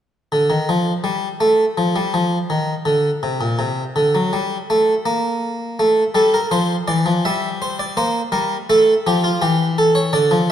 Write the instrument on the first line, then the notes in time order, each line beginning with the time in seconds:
harpsichord
0.32 D3
0.50 D#3
0.69 F3
1.04 G3
1.40 A3
1.78 F3
1.96 G3
2.14 F3
2.50 D#3
2.85 D3
3.23 C3
3.41 A#2
3.59 C3
3.96 D3
4.15 F#3
4.33 G3
4.70 A3
5.06 A#3
5.79 A3
6.15 G3 A4
6.34 A#4
6.51 F3 C5
6.88 E3 D5
7.06 F3
7.25 G3 E5
7.62 C5
7.79 D5
7.97 A#3 C5
8.32 G3 A#4
8.70 A3 A4
9.07 F3 G4
9.24 F4
9.42 E3 G4
9.78 A4
9.95 C#5
10.13 D3 D5
10.31 F3